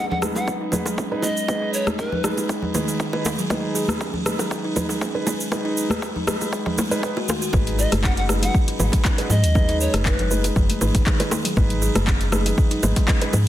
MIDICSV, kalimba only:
0, 0, Header, 1, 2, 480
1, 0, Start_track
1, 0, Key_signature, 5, "minor"
1, 0, Tempo, 504202
1, 1416, Time_signature, 4, 2, 24, 8
1, 12833, End_track
2, 0, Start_track
2, 0, Title_t, "Kalimba"
2, 0, Program_c, 0, 108
2, 213, Note_on_c, 0, 56, 73
2, 336, Note_off_c, 0, 56, 0
2, 342, Note_on_c, 0, 54, 74
2, 443, Note_off_c, 0, 54, 0
2, 580, Note_on_c, 0, 63, 90
2, 683, Note_off_c, 0, 63, 0
2, 821, Note_on_c, 0, 56, 74
2, 923, Note_off_c, 0, 56, 0
2, 932, Note_on_c, 0, 61, 76
2, 1049, Note_off_c, 0, 61, 0
2, 1171, Note_on_c, 0, 56, 75
2, 1295, Note_off_c, 0, 56, 0
2, 1412, Note_on_c, 0, 56, 82
2, 1529, Note_off_c, 0, 56, 0
2, 1540, Note_on_c, 0, 63, 98
2, 1643, Note_off_c, 0, 63, 0
2, 1782, Note_on_c, 0, 56, 72
2, 1883, Note_off_c, 0, 56, 0
2, 2021, Note_on_c, 0, 63, 75
2, 2128, Note_off_c, 0, 63, 0
2, 2133, Note_on_c, 0, 56, 75
2, 2249, Note_off_c, 0, 56, 0
2, 2373, Note_on_c, 0, 56, 80
2, 2489, Note_off_c, 0, 56, 0
2, 2611, Note_on_c, 0, 51, 101
2, 2735, Note_off_c, 0, 51, 0
2, 2739, Note_on_c, 0, 56, 75
2, 2842, Note_off_c, 0, 56, 0
2, 2981, Note_on_c, 0, 68, 94
2, 3042, Note_off_c, 0, 68, 0
2, 3220, Note_on_c, 0, 54, 101
2, 3323, Note_off_c, 0, 54, 0
2, 3333, Note_on_c, 0, 56, 81
2, 3449, Note_off_c, 0, 56, 0
2, 3571, Note_on_c, 0, 68, 101
2, 3688, Note_off_c, 0, 68, 0
2, 3813, Note_on_c, 0, 61, 85
2, 3929, Note_off_c, 0, 61, 0
2, 4051, Note_on_c, 0, 56, 76
2, 4175, Note_off_c, 0, 56, 0
2, 4182, Note_on_c, 0, 54, 76
2, 4283, Note_off_c, 0, 54, 0
2, 4421, Note_on_c, 0, 63, 98
2, 4523, Note_off_c, 0, 63, 0
2, 4661, Note_on_c, 0, 56, 77
2, 4763, Note_off_c, 0, 56, 0
2, 4772, Note_on_c, 0, 61, 80
2, 4889, Note_off_c, 0, 61, 0
2, 5013, Note_on_c, 0, 56, 77
2, 5136, Note_off_c, 0, 56, 0
2, 5254, Note_on_c, 0, 56, 84
2, 5370, Note_off_c, 0, 56, 0
2, 5380, Note_on_c, 0, 63, 106
2, 5482, Note_off_c, 0, 63, 0
2, 5623, Note_on_c, 0, 56, 76
2, 5724, Note_off_c, 0, 56, 0
2, 5861, Note_on_c, 0, 63, 79
2, 5968, Note_off_c, 0, 63, 0
2, 5975, Note_on_c, 0, 56, 76
2, 6090, Note_off_c, 0, 56, 0
2, 6214, Note_on_c, 0, 56, 85
2, 6330, Note_off_c, 0, 56, 0
2, 6453, Note_on_c, 0, 56, 79
2, 6570, Note_off_c, 0, 56, 0
2, 6581, Note_on_c, 0, 56, 104
2, 6643, Note_off_c, 0, 56, 0
2, 6823, Note_on_c, 0, 66, 101
2, 6929, Note_off_c, 0, 66, 0
2, 6937, Note_on_c, 0, 51, 80
2, 7058, Note_off_c, 0, 51, 0
2, 7062, Note_on_c, 0, 66, 98
2, 7164, Note_off_c, 0, 66, 0
2, 7173, Note_on_c, 0, 56, 85
2, 7289, Note_off_c, 0, 56, 0
2, 7414, Note_on_c, 0, 68, 109
2, 7530, Note_off_c, 0, 68, 0
2, 7654, Note_on_c, 0, 61, 87
2, 7770, Note_off_c, 0, 61, 0
2, 7893, Note_on_c, 0, 56, 73
2, 8016, Note_off_c, 0, 56, 0
2, 8021, Note_on_c, 0, 54, 76
2, 8123, Note_off_c, 0, 54, 0
2, 8262, Note_on_c, 0, 63, 100
2, 8364, Note_off_c, 0, 63, 0
2, 8502, Note_on_c, 0, 56, 77
2, 8604, Note_off_c, 0, 56, 0
2, 8613, Note_on_c, 0, 61, 82
2, 8730, Note_off_c, 0, 61, 0
2, 8853, Note_on_c, 0, 56, 77
2, 8976, Note_off_c, 0, 56, 0
2, 9095, Note_on_c, 0, 56, 86
2, 9210, Note_off_c, 0, 56, 0
2, 9222, Note_on_c, 0, 63, 102
2, 9324, Note_off_c, 0, 63, 0
2, 9462, Note_on_c, 0, 56, 77
2, 9563, Note_off_c, 0, 56, 0
2, 9701, Note_on_c, 0, 63, 80
2, 9808, Note_off_c, 0, 63, 0
2, 9812, Note_on_c, 0, 56, 75
2, 9929, Note_off_c, 0, 56, 0
2, 10051, Note_on_c, 0, 56, 83
2, 10168, Note_off_c, 0, 56, 0
2, 10292, Note_on_c, 0, 51, 107
2, 10415, Note_off_c, 0, 51, 0
2, 10419, Note_on_c, 0, 56, 79
2, 10522, Note_off_c, 0, 56, 0
2, 10660, Note_on_c, 0, 68, 101
2, 10722, Note_off_c, 0, 68, 0
2, 10898, Note_on_c, 0, 54, 97
2, 11001, Note_off_c, 0, 54, 0
2, 11009, Note_on_c, 0, 56, 82
2, 11128, Note_off_c, 0, 56, 0
2, 11252, Note_on_c, 0, 68, 111
2, 11369, Note_off_c, 0, 68, 0
2, 11490, Note_on_c, 0, 61, 88
2, 11608, Note_off_c, 0, 61, 0
2, 11731, Note_on_c, 0, 56, 80
2, 11855, Note_off_c, 0, 56, 0
2, 11859, Note_on_c, 0, 54, 75
2, 11962, Note_off_c, 0, 54, 0
2, 12099, Note_on_c, 0, 63, 102
2, 12202, Note_off_c, 0, 63, 0
2, 12340, Note_on_c, 0, 56, 82
2, 12442, Note_off_c, 0, 56, 0
2, 12451, Note_on_c, 0, 61, 82
2, 12569, Note_off_c, 0, 61, 0
2, 12691, Note_on_c, 0, 56, 78
2, 12815, Note_off_c, 0, 56, 0
2, 12833, End_track
0, 0, End_of_file